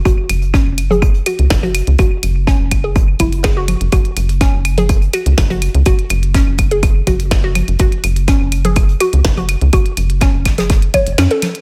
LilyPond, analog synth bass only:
\new Staff \with { instrumentName = "Analog synth bass" } { \clef bass \time 4/4 \key cis \phrygian \tempo 4 = 124 fis,,16 r16 fis,,8. fis,,4~ fis,,16 r16 cis,16 fis,,8. cis,16 | fis,,16 r16 fis,,8. fis,,4~ fis,,16 fis,,4~ fis,,16 fis,,16 | fis,,16 r16 fis,,8. fis,,4~ fis,,16 r16 cis,16 fis,,8. cis,16 | fis,,16 r16 fis,,8. fis,,4~ fis,,16 fis,,4~ fis,,16 fis,,16 |
fis,,16 r16 fis,,8. fis,,4~ fis,,16 r16 cis,16 fis,,8. cis,16 | fis,,16 r16 fis,,8. fis,,4~ fis,,16 r16 fis,,16 fis,16 r8. | }